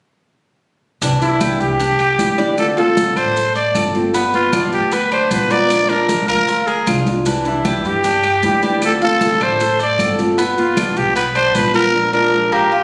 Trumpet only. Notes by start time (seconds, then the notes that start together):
1.22 E4
1.61 G4
2.59 A4
2.77 A4
3.17 C5
3.56 D5
4.34 F4
4.73 G4
4.93 B4
5.12 C5
5.31 B4
5.51 D5
5.89 A#4
6.28 A#4
6.67 G#4
7.46 E4
7.86 G4
8.85 A4
9.04 A4
9.43 C5
9.81 D5
10.58 F4
10.97 G4
11.16 B4
11.35 C5
11.55 B4
11.74 A#4
12.13 A#4
12.53 G4